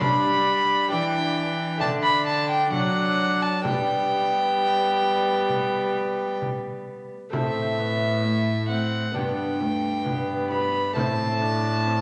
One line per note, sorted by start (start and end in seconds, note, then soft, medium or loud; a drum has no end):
0.00 0.93 G3 medium
0.00 0.87 G3 medium
0.00 0.87 D4 medium
0.00 0.89 D4 medium
0.00 0.88 D5 medium
0.00 0.90 B5 loud
0.00 frame drum medium
0.89 1.82 E3 medium
0.89 1.77 E3 medium
0.89 1.77 D4 medium
0.89 1.79 D4 medium
0.89 1.78 D5 medium
0.89 1.79 G5 loud
1.78 2.71 D3 medium
1.78 2.68 D3 medium
1.78 3.59 A3 medium
1.78 3.59 D4 medium
1.78 3.60 D5 medium
1.78 1.89 A5 loud
1.78 frame drum medium
1.82 2.71 D4 medium
2.03 2.26 B5 loud
2.27 2.49 A5 loud
2.50 2.72 G5 medium
2.72 3.66 F#3 medium
2.72 3.61 F#3 medium
2.72 3.66 D4 medium
2.72 3.44 F#5 loud
2.72 frame drum soft
3.42 3.64 A5 medium
3.62 7.13 G3 medium
3.62 7.10 G3 soft
3.62 7.28 B3 soft
3.62 7.14 B3 medium
3.62 7.29 D4 soft
3.62 7.29 D5 soft
3.62 6.38 G5 loud
3.62 frame drum medium
5.49 frame drum soft
6.42 frame drum soft
7.30 9.11 A2 medium
7.30 9.09 A3 soft
7.30 9.10 C4 soft
7.30 7.80 C4 medium
7.30 9.11 A4 soft
7.30 8.66 E5 medium
7.30 frame drum medium
7.34 9.12 A2 soft
7.79 8.26 B3 soft
8.24 8.71 A3 medium
8.69 9.14 C4 medium
8.69 9.16 F#5 medium
9.12 10.98 G2 medium
9.12 10.91 B3 soft
9.12 9.62 B3 medium
9.12 10.92 D4 soft
9.12 10.92 D5 soft
9.12 10.50 G5 medium
9.12 frame drum soft
9.16 10.93 G2 medium
9.60 10.05 A3 medium
9.60 frame drum soft
10.06 10.95 B3 medium
10.06 frame drum soft
10.51 10.95 B5 medium
10.51 frame drum soft
10.93 12.01 A2 medium
10.93 12.01 A2 soft
10.93 12.01 A3 soft
10.93 12.01 C4 soft
10.93 11.43 C4 medium
10.93 12.01 A4 soft
10.93 12.01 A5 loud
10.93 frame drum medium
11.41 11.88 D4 medium
11.86 12.01 C4 medium